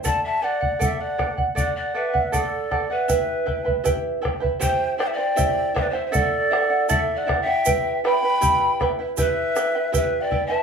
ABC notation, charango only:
X:1
M:2/4
L:1/16
Q:1/4=79
K:Em
V:1 name="Charango"
[Adf]2 [Adf] [df] [Adf]2 [Adf] [df] | [Adf]2 [Adf] [df] [Adf]2 [Adf] [df] | [EGBeg]2 [EBeg] [EBg] [EGBeg]2 [EBeg] [EBg] | [EGceg]2 [Eceg] [Ecg] [EGceg]2 [Eceg] [Ecg] |
[EAdef]2 [Edef] [Edf] [EAdef]2 [Edef] [Edf] | [EGBeg]2 [EBeg] [EBg] [EGBeg]2 [EBeg] [EBg] | [EGBeg]2 [EBeg] [EBg] [EGBeg]2 [EBeg] [EBg] |]